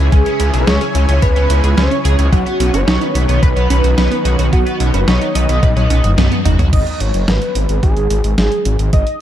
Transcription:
Already playing: C#3 C#4 E4 G#4
0.12 C#2 G#3 C#4 G#4 G#5, kick, closed hi-hat
0.26 C#4, closed hi-hat
0.40 C#2 C#4 E4, closed hi-hat
0.54 B1 E4 G#4 C#5 C#6, closed hi-hat
0.67 C#2 C#4 G#4, snare, closed hi-hat
0.81 C#4 G#4, closed hi-hat
0.95 C#2 C#4, closed hi-hat
1.09 C#2 C#4 G#5, closed hi-hat
1.22 C#2 B4 C#5 E5 B5, kick, closed hi-hat
1.36 C#2 C#4 G#5, closed hi-hat
1.50 C#2 C#4 E4, closed hi-hat
1.64 C#2 G#4, closed hi-hat
1.77 C#2 C#4 C#5 C#6, snare, closed hi-hat
1.91 C#4, closed hi-hat
2.05 C#2 G#4, closed hi-hat
2.19 C#2 G#4 G#5, closed hi-hat
2.32 B1 D#3 F#3 B3 F#4 F#5, kick, closed hi-hat
2.46 B3, closed hi-hat
2.60 B1 B3 C#4, closed hi-hat
2.74 F#1 C#4 F#4 C#5 C#6, closed hi-hat
2.87 B1 B3 D#4, snare, closed hi-hat
3.01 B3 D#4, closed hi-hat
3.15 B1 B3, closed hi-hat
3.29 B1 B3 C#5, closed hi-hat
3.42 B1 B4 B5, kick, closed hi-hat
3.56 B1 B3 C#5, closed hi-hat
3.70 B1 B3 C#4, closed hi-hat
3.84 B1 F#4, closed hi-hat
3.98 B1 B3 B4 B5, snare, closed hi-hat
4.11 B3, closed hi-hat
4.25 B1 D#4 F#4, closed hi-hat
4.39 B1 F#4 C#5, closed hi-hat
4.53 B1 F#3 B3 D#4 F#4 F#5, kick, closed hi-hat
4.66 B3, closed hi-hat
4.80 B1 B3 C#4, closed hi-hat
4.94 F#1 C#4 F#4 B4 B5, closed hi-hat
5.08 B1 B3 D#4 C#5 C#6, snare, closed hi-hat
5.21 B3 D#4, closed hi-hat
5.35 B1 B3 D#5 D#6, closed hi-hat
5.49 B1 B3 C#5, closed hi-hat
5.63 B1 B4, kick, closed hi-hat, high tom
5.76 B1 B3 C#5, closed hi-hat, high tom
5.90 B1 B3 C#4, closed hi-hat
6.04 F#1 F#4, closed hi-hat, mid tom
6.18 B1 B3, snare, closed hi-hat, mid tom
6.32 B3, closed hi-hat
6.45 F#1 D#4 F#4, closed hi-hat, mid tom
6.59 B1 F#4 C#5, closed hi-hat, mid tom
6.73 G#1 D#5, kick, closed hi-hat, crash
6.87 closed hi-hat
7.00 G#1 C#5, closed hi-hat
7.14 F#1, closed hi-hat
7.28 G#1 B4, snare, closed hi-hat
7.42 closed hi-hat
7.55 G#1, closed hi-hat
7.69 G#1, closed hi-hat
7.83 G#1 G#4, kick, closed hi-hat
7.97 G#1, closed hi-hat
8.10 G#1, closed hi-hat
8.24 G#1, closed hi-hat
8.38 G#1 G#4, snare, closed hi-hat
8.52 closed hi-hat
8.65 G#1, closed hi-hat
8.79 G#1, closed hi-hat
8.93 G#1 D#5, kick, closed hi-hat
9.07 closed hi-hat

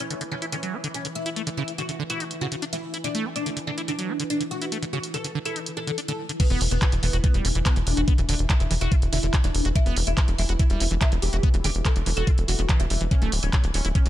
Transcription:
Already playing: E3
0.00 C#4, closed hi-hat
0.10 D3, closed hi-hat
0.21 D3, closed hi-hat
0.31 D3 C#4
0.42 E4, closed hi-hat
0.52 D3 C#4, closed hi-hat
0.63 F#3, closed hi-hat
0.73 D4
0.84 D3, closed hi-hat
0.94 C#4, closed hi-hat
1.05 D3, closed hi-hat
1.15 E4
1.26 E4, closed hi-hat
1.36 A3, closed hi-hat
1.47 D3, closed hi-hat
1.57 C#3 E4
1.68 closed hi-hat
1.78 D3 F#4, closed hi-hat
1.89 D3, closed hi-hat
1.99 D3
2.10 E4 F#4, closed hi-hat
2.20 D4, closed hi-hat
2.31 closed hi-hat
2.41 C#3 F#4
2.52 C#3, closed hi-hat
2.62 D4, closed hi-hat
2.73 E3 E4, closed hi-hat
2.94 E4, closed hi-hat
3.04 D3 D4, closed hi-hat
3.15 A3, closed hi-hat
3.25 D4
3.36 D4, closed hi-hat
3.46 D3, closed hi-hat
3.57 D3, closed hi-hat
3.67 D3 D4
3.78 E4, closed hi-hat
3.88 D3 D4, closed hi-hat
3.99 F#3, closed hi-hat
4.09 D4
4.20 D3, closed hi-hat
4.30 D4, closed hi-hat
4.41 D3, closed hi-hat
4.51 F#4
4.62 E4, closed hi-hat
4.72 A3, closed hi-hat
4.83 D3, closed hi-hat
4.93 C#3 F#4
5.04 closed hi-hat
5.14 D3 A4, closed hi-hat
5.24 D3, closed hi-hat
5.35 D3
5.45 E4 A4, closed hi-hat
5.56 D4, closed hi-hat
5.66 closed hi-hat
5.77 D4 A4
5.87 D3, closed hi-hat
5.98 D4, closed hi-hat
6.08 D3 A4, closed hi-hat
6.29 D3, closed hi-hat
6.40 E3 B3, kick, closed hi-hat, crash
6.50 E1 B3, closed hi-hat
6.61 E1 E4, open hi-hat
6.71 E1 B3, closed hi-hat
6.82 E3, kick, clap, closed hi-hat
6.92 E1 E3, closed hi-hat
7.03 E1 E3 B3, open hi-hat
7.13 E1 F#4, closed hi-hat
7.24 E3 B3, kick, closed hi-hat
7.34 E1 G3, closed hi-hat
7.45 E1 E4, open hi-hat
7.55 E1 E3, closed hi-hat
7.66 B3, kick, clap, closed hi-hat
7.76 E1 E3, closed hi-hat
7.87 E1 D4, open hi-hat
7.97 E1 F#4, closed hi-hat
8.08 B3, kick, closed hi-hat
8.18 E1 E3, closed hi-hat
8.29 E1 D3 D4, open hi-hat
8.39 E1, closed hi-hat
8.50 E3 E4, kick, clap, closed hi-hat
8.60 E1 E3, closed hi-hat
8.71 E1 E3, open hi-hat
8.81 E1 E4 F#4, closed hi-hat
8.92 E4, kick, closed hi-hat
9.02 E1, closed hi-hat
9.13 E1 D3 E4, open hi-hat
9.23 E1 D3, closed hi-hat
9.34 E4, kick, clap, closed hi-hat
9.44 E1 F#3 D4, closed hi-hat
9.55 E1, open hi-hat
9.65 E1 F#4, closed hi-hat
9.76 E3 E4, kick, closed hi-hat
9.86 E1 B3, closed hi-hat
9.96 E1 E4, open hi-hat
10.07 E1 E4, closed hi-hat
10.17 E3, kick, clap, closed hi-hat
10.28 E1 E3, closed hi-hat
10.38 E1 E3 E4, open hi-hat
10.49 E1 F#4, closed hi-hat
10.59 E3 E4, kick, closed hi-hat
10.70 E1 G3, closed hi-hat
10.80 E1 E4, open hi-hat
10.91 E1 E3, closed hi-hat
11.01 E4, kick, clap, closed hi-hat
11.12 E1 E3, closed hi-hat
11.22 E1 G4, open hi-hat
11.33 E1 F#4, closed hi-hat
11.43 B3, kick, closed hi-hat
11.54 E1 E3, closed hi-hat
11.64 E1 D3 G4, open hi-hat
11.75 E1, closed hi-hat
11.85 E3 A4, kick, clap, closed hi-hat
11.96 E1 E3, closed hi-hat
12.06 E1 E3, open hi-hat
12.17 E1 F#4 A4, closed hi-hat
12.27 E4, kick, closed hi-hat
12.38 E1, closed hi-hat
12.48 E1 E3 F#4, open hi-hat
12.59 E1 B3, closed hi-hat
12.69 E3, kick, clap, closed hi-hat
12.80 E1 D3 E4, closed hi-hat
12.90 E1 G3, open hi-hat
13.01 E1 E3, closed hi-hat
13.11 D3 C#4, kick, closed hi-hat
13.22 D1 A3, closed hi-hat
13.32 D1 D4, open hi-hat
13.43 D1 C#4, closed hi-hat
13.53 D3, kick, clap, closed hi-hat
13.64 D1 D3, closed hi-hat
13.74 D1 D3 C#4, open hi-hat
13.85 D1 E4, closed hi-hat
13.95 D3 C#4, kick, closed hi-hat
14.06 D1 F#3, closed hi-hat

